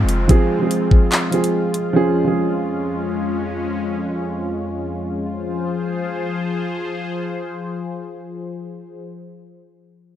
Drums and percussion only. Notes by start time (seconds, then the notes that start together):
0.09 closed hi-hat
0.29 kick, closed hi-hat
0.71 closed hi-hat
0.91 kick
1.12 clap, closed hi-hat
1.32 closed hi-hat
1.44 closed hi-hat
1.74 closed hi-hat